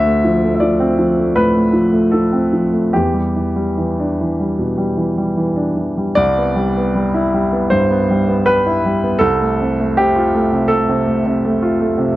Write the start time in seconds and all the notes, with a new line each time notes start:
Already playing: D2 E5
0.06 A3
0.24 F3
0.43 A3
0.55 E5
0.60 F3 D5
0.80 C4
0.99 F3
1.18 A3
1.36 A2 B4
1.54 A3
1.73 F3
1.92 A3
2.12 F3 A4
2.33 C4
2.53 F3
2.73 A3
2.93 E2 G4
3.14 G3
3.36 E3
3.56 G3
3.78 E3
4.00 D4
4.21 E3
4.40 G3
4.59 B2
4.78 G3
4.97 E3
5.18 G3
5.37 E3
5.56 D4
5.77 E3
5.97 G3
6.15 C2 D5
6.38 B3
6.55 G3
6.77 B3
6.95 G3
7.14 E4
7.34 G3
7.53 B3
7.70 G2 C5
7.91 B3
8.10 G3
8.28 B3
8.46 G3 B4
8.67 E4
8.86 G3
9.04 B3
9.19 C2 A4
9.41 A3
9.60 C3
9.80 A3
9.97 C3 G4
10.16 F4
10.35 A3
10.53 C3
10.68 A3 A4
10.89 C3
11.07 A3
11.26 C3
11.45 A3
11.62 F4
11.81 A3
11.98 C3